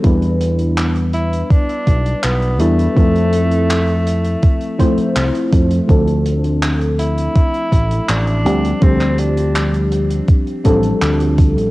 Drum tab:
HH |xxxxxxxxxxxxxxxx|xxxxxxxxxxxxxxxx|xxxxxxxxxxxxxxxx|xxxxxxxxxxxxxxxx|
CP |----x-------x---|----x-------x---|----x-------x---|-x--x-------x---|
BD |o-------o-o-----|o-------o-o---o-|o-------o-o-----|o-------o-o---o-|